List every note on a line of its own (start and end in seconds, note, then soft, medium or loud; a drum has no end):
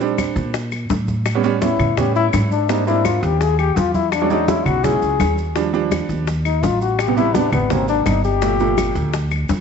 0.00 0.31 A#1 medium
0.00 0.51 G3 medium
0.00 0.51 C4 medium
0.00 0.51 D4 medium
0.00 high bongo soft
0.00 high conga soft
0.00 maracas soft
0.18 high bongo medium
0.18 high conga medium
0.18 claves medium
0.18 maracas medium
0.36 0.86 A#2 medium
0.36 high bongo soft
0.36 high conga soft
0.36 maracas soft
0.54 high bongo medium
0.54 high conga soft
0.54 maracas medium
0.72 high bongo soft
0.72 high conga soft
0.72 claves medium
0.72 maracas soft
0.90 1.74 A2 medium
0.90 high bongo soft
0.90 low bongo medium
0.90 high conga medium
0.90 maracas medium
1.08 high conga medium
1.08 maracas soft
1.26 high bongo medium
1.26 high conga soft
1.26 claves medium
1.26 maracas medium
1.35 1.41 G3 medium
1.35 1.41 B3 medium
1.35 1.41 C#4 medium
1.44 1.56 G3 loud
1.44 1.56 B3 medium
1.44 1.57 C#4 loud
1.44 high bongo soft
1.44 high conga soft
1.44 maracas soft
1.62 1.87 G3 medium
1.62 1.87 B3 medium
1.62 1.87 C#4 medium
1.62 2.00 E4 medium
1.62 high bongo medium
1.62 high conga loud
1.62 maracas medium
1.79 2.29 A2 medium
1.79 high bongo soft
1.79 low conga medium
1.79 claves medium
1.79 maracas soft
1.97 2.48 G3 medium
1.97 2.48 B3 medium
1.97 2.48 C#4 medium
1.97 2.15 G4 medium
1.97 high bongo medium
1.97 high conga soft
1.97 low conga medium
1.97 maracas medium
2.15 2.26 E4 loud
2.15 high bongo soft
2.15 high conga soft
2.15 maracas soft
2.33 3.17 G#2 medium
2.33 high bongo soft
2.33 low bongo medium
2.33 high conga medium
2.33 claves medium
2.33 maracas medium
2.51 2.71 D4 loud
2.51 high conga soft
2.51 maracas soft
2.69 2.82 G3 medium
2.69 2.82 A#3 medium
2.69 2.82 C4 medium
2.69 2.82 D4 medium
2.69 2.87 D#4 loud
2.69 high bongo medium
2.69 high conga soft
2.69 maracas medium
2.87 3.37 G3 medium
2.87 3.37 A#3 medium
2.87 3.37 C4 medium
2.87 3.37 D4 medium
2.87 3.07 E4 loud
2.87 high bongo soft
2.87 high conga soft
2.87 maracas soft
3.05 3.25 F4 medium
3.05 high bongo medium
3.05 high conga medium
3.05 claves medium
3.05 maracas medium
3.23 3.73 D#2 loud
3.23 3.43 G4 loud
3.23 high bongo soft
3.23 high conga soft
3.23 maracas soft
3.41 3.59 G#4 loud
3.41 high bongo medium
3.41 high conga soft
3.41 maracas medium
3.59 3.79 G4 loud
3.59 high bongo soft
3.59 high conga soft
3.59 claves medium
3.59 maracas soft
3.76 4.60 E2 medium
3.76 3.94 F4 loud
3.76 high bongo soft
3.76 low bongo medium
3.76 high conga medium
3.76 maracas medium
3.94 4.14 E4 medium
3.94 high conga medium
3.94 maracas soft
4.12 4.32 D4 medium
4.12 high bongo medium
4.12 high conga soft
4.12 claves medium
4.12 maracas medium
4.21 4.28 F#3 medium
4.21 4.28 G#3 medium
4.21 4.28 C#4 medium
4.21 4.28 D4 medium
4.30 4.43 F#3 medium
4.30 4.43 G#3 medium
4.30 4.43 C#4 medium
4.30 4.43 D4 medium
4.30 4.50 D#4 loud
4.30 high bongo soft
4.30 high conga soft
4.30 maracas soft
4.48 4.73 F#3 medium
4.48 4.73 G#3 medium
4.48 4.73 C#4 medium
4.48 4.74 E4 medium
4.48 4.68 E4 medium
4.48 high bongo medium
4.48 high conga loud
4.48 maracas medium
4.66 4.99 B1 medium
4.66 4.86 F#4 loud
4.66 high bongo soft
4.66 low conga medium
4.66 claves medium
4.66 maracas soft
4.84 5.34 F#3 medium
4.84 5.34 G#3 medium
4.84 5.34 C#4 medium
4.84 5.34 E4 medium
4.84 5.38 G#4 loud
4.84 high bongo medium
4.84 high conga soft
4.84 low conga medium
4.84 maracas medium
5.02 5.19 C#2 medium
5.02 high bongo soft
5.02 high conga soft
5.02 maracas soft
5.20 6.04 D#2 medium
5.20 high bongo soft
5.20 low bongo medium
5.20 high conga medium
5.20 claves medium
5.20 maracas medium
5.37 high conga soft
5.37 maracas soft
5.55 5.68 F3 medium
5.55 5.68 G3 medium
5.55 5.68 D4 medium
5.55 high bongo medium
5.55 high conga soft
5.55 maracas medium
5.73 6.24 F3 medium
5.73 6.24 G3 medium
5.73 6.24 D4 loud
5.73 high bongo soft
5.73 high conga soft
5.73 maracas soft
5.92 high bongo medium
5.92 high conga medium
5.92 claves medium
5.92 maracas medium
6.09 6.59 D#2 loud
6.09 high bongo soft
6.09 high conga soft
6.09 maracas soft
6.27 high bongo medium
6.27 high conga soft
6.27 maracas medium
6.45 6.65 D#4 medium
6.45 high bongo soft
6.45 high conga soft
6.45 claves medium
6.45 maracas soft
6.63 7.47 A1 medium
6.63 6.81 F4 loud
6.63 high bongo soft
6.63 low bongo medium
6.63 high conga medium
6.63 maracas medium
6.81 7.01 F#4 loud
6.81 maracas soft
6.99 7.16 G4 loud
6.99 high bongo medium
6.99 high conga soft
6.99 claves medium
6.99 maracas medium
7.08 7.14 C3 medium
7.08 7.14 G3 medium
7.08 7.14 B3 medium
7.17 7.29 C3 medium
7.17 7.29 G3 medium
7.17 7.29 B3 medium
7.17 7.37 E4 loud
7.17 high bongo soft
7.17 high conga soft
7.17 maracas soft
7.34 7.60 C3 medium
7.34 7.60 G3 medium
7.34 7.60 B3 medium
7.34 7.53 D4 medium
7.34 high bongo medium
7.34 high conga loud
7.34 maracas medium
7.52 8.02 G#1 medium
7.52 7.73 B3 medium
7.52 high bongo soft
7.52 low conga medium
7.52 claves medium
7.52 maracas soft
7.70 8.20 C3 medium
7.70 8.21 F#3 medium
7.70 8.21 A#3 medium
7.70 7.88 C4 medium
7.70 high bongo medium
7.70 high conga soft
7.70 low conga medium
7.70 maracas medium
7.88 8.09 D4 loud
7.88 high bongo soft
7.88 high conga soft
7.88 maracas soft
8.06 8.90 G1 loud
8.06 8.24 D#4 medium
8.06 high bongo soft
8.06 low bongo medium
8.06 high conga medium
8.06 claves medium
8.06 maracas medium
8.24 9.10 G4 loud
8.24 high conga soft
8.24 maracas soft
8.42 8.55 A#2 medium
8.42 8.55 F3 medium
8.42 8.55 A3 medium
8.42 high bongo medium
8.42 high conga soft
8.42 maracas medium
8.60 9.10 A#2 medium
8.60 9.10 F3 medium
8.60 9.10 A3 medium
8.60 high bongo soft
8.60 high conga soft
8.60 maracas soft
8.78 high bongo medium
8.78 high conga medium
8.78 claves medium
8.78 maracas medium
8.95 9.46 D2 loud
8.95 high bongo soft
8.95 high conga soft
8.95 maracas soft
9.13 high bongo medium
9.13 high conga soft
9.13 maracas medium
9.31 high bongo soft
9.31 high conga soft
9.31 claves medium
9.31 maracas soft
9.49 9.61 F2 medium
9.49 high bongo soft
9.49 low bongo medium
9.49 high conga medium
9.49 maracas medium